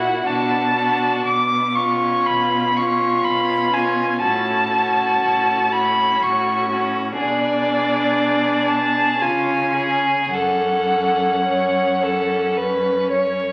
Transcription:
0.00 0.14 A#2 soft
0.00 0.25 E4 soft
0.00 0.25 F#4 soft
0.00 0.28 F#5 medium
0.25 1.14 B2 soft
0.25 0.75 D4 soft
0.25 0.75 F#4 soft
0.25 1.25 A5 medium
0.75 1.25 D4 soft
0.75 1.25 F#4 soft
1.25 2.15 B2 medium
1.25 1.77 D6 medium
1.75 2.76 C#4 soft
1.75 2.75 F4 soft
1.75 2.28 C#6 medium
2.27 3.15 B2 medium
2.27 2.79 B5 medium
2.77 3.73 C#4 soft
2.77 3.72 F4 soft
2.77 3.26 C#6 medium
3.25 4.11 B2 soft
3.25 3.75 B5 medium
3.73 4.22 C#4 soft
3.73 4.21 F4 soft
3.73 4.21 G#5 medium
4.22 5.12 A2 medium
4.22 4.72 C#4 soft
4.22 4.71 F#4 soft
4.22 5.74 A5 medium
4.73 5.72 C#4 soft
4.73 5.72 F#4 soft
5.24 6.12 A2 medium
5.72 6.69 C#4 soft
5.72 6.69 F#4 soft
5.72 6.24 B5 medium
6.22 7.08 A2 medium
6.22 6.71 C#6 medium
6.71 7.18 C#4 soft
6.71 7.18 F#4 soft
7.19 9.23 B2 soft
7.19 9.18 D4 soft
7.19 9.23 G#4 soft
7.19 8.70 D5 medium
8.68 9.23 A5 medium
9.21 10.33 C#3 soft
9.21 10.31 C#4 soft
9.21 9.75 F4 soft
9.21 10.33 G#5 medium
9.76 10.35 G#4 soft
10.33 13.41 F#2 soft
10.33 13.41 C#4 soft
10.33 11.34 A4 soft
10.33 12.53 F#5 medium
11.45 12.04 C#5 soft
12.03 12.58 A4 soft
12.57 13.11 B4 soft
13.11 13.52 C#5 soft

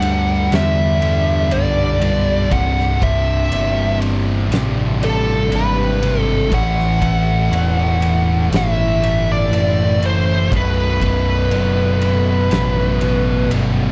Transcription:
0.00 0.48 D2 medium
0.00 0.48 G2 medium
0.00 0.49 G2 medium
0.00 0.49 D3 loud
0.00 0.50 D3 medium
0.00 0.54 G3 loud
0.00 2.46 G3 medium
0.00 0.50 G3 medium
0.00 2.47 D4 medium
0.00 2.47 A4 medium
0.00 0.57 F#5 loud
0.00 ride medium
0.51 1.48 E2 medium
0.51 0.99 G2 loud
0.51 1.00 D3 loud
0.51 1.00 G3 loud
0.51 snare loud
0.51 ride loud
0.55 1.53 E5 loud
1.00 1.50 G2 medium
1.00 1.50 D3 medium
1.00 1.50 G3 loud
1.00 ride medium
1.51 2.47 B0 medium
1.51 1.98 G2 medium
1.51 1.99 D3 medium
1.51 1.99 G3 loud
1.51 2.52 D5 loud
1.51 ride loud
1.99 2.47 G2 medium
1.99 2.48 D3 medium
1.99 2.48 G3 medium
1.99 ride medium
2.03 2.49 G2 medium
2.50 3.47 C1 loud
2.50 2.97 C2 loud
2.50 2.98 G2 loud
2.50 2.99 C3 loud
2.50 6.47 D5 medium
2.50 3.03 F#5 loud
2.50 kick loud
2.50 ride loud
2.54 6.48 C4 medium
2.54 6.48 G4 medium
2.79 snare soft
2.99 3.47 C2 medium
2.99 3.48 G2 medium
2.99 3.48 C3 loud
2.99 kick medium
2.99 ride medium
3.03 3.98 E5 medium
3.48 4.47 G1 medium
3.48 3.97 C2 medium
3.48 3.98 G2 medium
3.48 3.98 C3 medium
3.48 ride loud
3.98 4.48 C2 medium
3.98 4.48 G2 medium
3.98 4.49 C3 medium
3.98 ride medium
4.49 5.47 A1 medium
4.49 4.98 C2 loud
4.49 4.99 G2 loud
4.49 4.99 C3 loud
4.49 ride loud
4.54 snare loud
4.99 5.48 C2 medium
4.99 5.49 G2 loud
4.99 5.49 C3 loud
4.99 ride medium
5.04 5.54 A4 medium
5.50 6.47 G#1 medium
5.50 6.00 C2 medium
5.50 6.00 G2 loud
5.50 6.01 C3 loud
5.50 ride loud
5.55 6.21 B4 loud
6.01 6.48 C2 medium
6.01 6.48 G2 medium
6.01 6.48 C3 loud
6.01 ride medium
6.21 6.49 A4 loud
6.50 7.47 A1 loud
6.50 6.98 A2 loud
6.50 6.99 E3 loud
6.50 10.46 A3 medium
6.50 7.00 A3 loud
6.50 10.46 E4 medium
6.50 13.92 A4 medium
6.50 kick loud
6.50 ride loud
6.54 8.48 F#5 loud
6.80 snare soft
6.99 7.49 A2 medium
6.99 7.50 E3 medium
6.99 7.50 A3 loud
6.99 kick medium
6.99 ride medium
7.50 8.47 E1 medium
7.50 7.99 A2 medium
7.50 7.99 E3 medium
7.50 7.99 A3 medium
7.50 ride loud
8.00 8.49 A2 medium
8.00 8.49 E3 loud
8.00 8.50 A3 medium
8.00 ride medium
8.50 9.47 G1 loud
8.50 9.00 A2 loud
8.50 9.00 E3 loud
8.50 9.00 A3 loud
8.50 ride loud
8.54 9.31 E5 loud
8.54 snare loud
9.01 9.49 A2 medium
9.01 9.50 E3 loud
9.01 9.50 A3 loud
9.01 ride medium
9.32 10.05 D5 loud
9.50 10.47 F#1 medium
9.50 9.98 A2 medium
9.50 9.99 E3 medium
9.50 9.99 A3 loud
9.50 ride loud
9.99 10.47 A2 medium
9.99 10.47 E3 medium
9.99 10.47 A3 medium
9.99 ride medium
10.06 10.50 C5 medium
10.50 11.47 B0 loud
10.50 10.98 B1 loud
10.50 10.98 F#2 loud
10.50 11.00 B2 loud
10.50 13.92 B3 medium
10.50 13.92 F#4 medium
10.50 kick loud
10.50 ride loud
10.57 13.50 B4 loud
10.99 11.49 B1 medium
10.99 11.50 F#2 medium
10.99 11.50 B2 loud
10.99 kick medium
10.99 ride medium
11.50 12.47 F#1 loud
11.50 12.00 B1 medium
11.50 12.00 F#2 medium
11.50 12.01 B2 medium
11.50 ride loud
12.01 12.49 B1 medium
12.01 12.49 F#2 medium
12.01 12.49 B2 medium
12.01 ride medium
12.50 13.47 A1 medium
12.50 13.00 B1 medium
12.50 13.01 F#2 loud
12.50 13.00 B2 loud
12.50 snare loud
12.50 ride loud
13.01 13.51 B1 medium
13.01 13.51 F#2 medium
13.01 13.51 B2 loud
13.01 ride medium
13.51 13.92 G1 medium
13.51 13.92 B1 loud
13.51 13.92 F#2 medium
13.51 13.92 B2 loud
13.51 ride loud

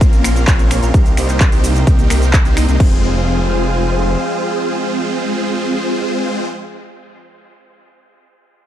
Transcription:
0.00 0.45 A#1 loud
0.00 0.45 A#3 medium
0.00 0.45 C4 medium
0.00 0.45 C#4 medium
0.00 0.45 F4 medium
0.00 2.76 A#4 medium
0.00 0.45 A#4 loud
0.00 0.92 F5 medium
0.00 2.76 C6 medium
0.00 kick loud
0.00 closed hi-hat medium
0.00 cabasa medium
0.13 closed hi-hat soft
0.13 cabasa soft
0.24 finger snap medium
0.24 open hi-hat loud
0.24 cabasa medium
0.36 closed hi-hat soft
0.36 cabasa soft
0.47 0.80 A#1 loud
0.47 0.80 A#3 loud
0.47 0.80 C#4 medium
0.47 0.80 F4 medium
0.47 0.80 C#5 loud
0.47 kick loud
0.47 clap loud
0.47 closed hi-hat medium
0.47 cabasa medium
0.59 closed hi-hat soft
0.59 cabasa soft
0.71 finger snap medium
0.71 open hi-hat loud
0.71 cabasa medium
0.82 0.92 A#1 loud
0.82 0.91 A#3 medium
0.82 0.91 C4 medium
0.82 0.91 C#4 medium
0.82 0.91 F4 medium
0.82 0.91 A#4 loud
0.82 closed hi-hat soft
0.82 cabasa soft
0.94 1.15 C2 loud
0.94 1.12 A#3 medium
0.94 1.12 C4 medium
0.94 1.12 D#4 medium
0.94 1.12 G4 medium
0.94 1.12 A#4 medium
0.94 2.78 D#5 medium
0.94 2.78 G5 medium
0.94 kick loud
0.94 closed hi-hat medium
0.94 cabasa soft
1.06 closed hi-hat soft
1.06 cabasa soft
1.17 1.50 C2 loud
1.17 1.46 A#3 medium
1.17 1.46 C4 medium
1.17 1.46 D#4 medium
1.17 1.46 G4 medium
1.17 1.46 C5 medium
1.17 finger snap medium
1.17 open hi-hat loud
1.17 cabasa medium
1.29 clap soft
1.29 closed hi-hat soft
1.29 cabasa soft
1.40 kick loud
1.40 clap loud
1.40 closed hi-hat medium
1.40 cabasa soft
1.52 1.85 C2 loud
1.52 1.80 A#3 loud
1.52 1.80 C4 medium
1.52 1.80 D#4 medium
1.52 1.80 G4 medium
1.52 1.80 C5 loud
1.52 open hi-hat medium
1.52 cabasa soft
1.64 open hi-hat loud
1.64 cabasa medium
1.75 closed hi-hat soft
1.75 cabasa soft
1.87 2.08 C2 loud
1.87 2.08 A#3 medium
1.87 2.08 C4 medium
1.87 2.08 D#4 medium
1.87 2.08 G4 medium
1.87 2.08 A#4 loud
1.87 kick loud
1.87 closed hi-hat medium
1.87 cabasa soft
1.99 closed hi-hat soft
1.99 cabasa soft
2.10 2.43 C2 loud
2.10 2.28 A#3 loud
2.10 2.28 C4 medium
2.10 2.28 D#4 medium
2.10 2.28 G4 medium
2.10 2.28 A#4 loud
2.10 finger snap medium
2.10 open hi-hat loud
2.10 cabasa medium
2.22 closed hi-hat soft
2.22 cabasa soft
2.33 kick loud
2.33 clap loud
2.33 closed hi-hat medium
2.33 cabasa soft
2.45 2.55 C2 loud
2.45 2.55 A#3 medium
2.45 2.55 C4 medium
2.45 2.55 D#4 medium
2.45 2.55 G4 medium
2.45 2.55 C5 medium
2.45 closed hi-hat soft
2.45 cabasa soft
2.57 2.66 C2 loud
2.57 2.66 A#3 medium
2.57 2.66 C4 medium
2.57 2.66 D#4 medium
2.57 2.66 G4 medium
2.57 2.66 D#5 loud
2.57 finger snap medium
2.57 open hi-hat loud
2.57 cabasa medium
2.68 2.78 C2 loud
2.68 2.78 A#3 medium
2.68 2.78 C4 medium
2.68 2.78 D#4 medium
2.68 2.78 G4 medium
2.68 2.78 D#5 medium
2.68 closed hi-hat soft
2.68 cabasa soft
2.80 4.16 F1 loud
2.80 6.46 F3 medium
2.80 6.46 G#3 medium
2.80 6.46 C4 medium
2.80 6.46 F4 medium
2.80 6.46 G#4 medium
2.80 6.46 C5 loud
2.80 6.45 F5 medium
2.80 kick loud
2.80 crash medium

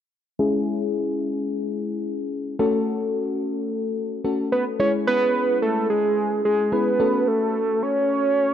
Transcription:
0.39 2.55 G#3 medium
0.39 2.55 C#4 medium
0.39 2.55 E4 medium
0.39 2.55 G#4 medium
2.59 4.21 A3 medium
2.59 4.21 C#4 medium
2.59 4.21 F#4 medium
2.59 4.21 A4 medium
4.24 4.80 A3 medium
4.24 4.78 C#4 soft
4.24 4.80 F#4 soft
4.24 4.80 A4 medium
4.52 4.65 B4 medium
4.80 6.68 G#3 medium
4.80 6.68 C#4 medium
4.80 6.68 E4 medium
4.80 6.68 G#4 medium
4.80 4.92 C#5 loud
5.07 5.58 B4 loud
5.62 5.88 A4 medium
5.90 6.41 G#4 medium
6.45 6.74 G#4 medium
6.72 7.00 G#3 soft
6.72 6.99 C#4 soft
6.72 7.00 E4 soft
6.72 7.00 G#4 medium
6.72 7.29 B4 loud
7.00 8.54 A3 medium
7.00 8.54 C#4 medium
7.00 8.54 F#4 medium
7.00 8.54 A4 medium
7.28 7.84 A4 loud
7.83 8.54 C#5 loud

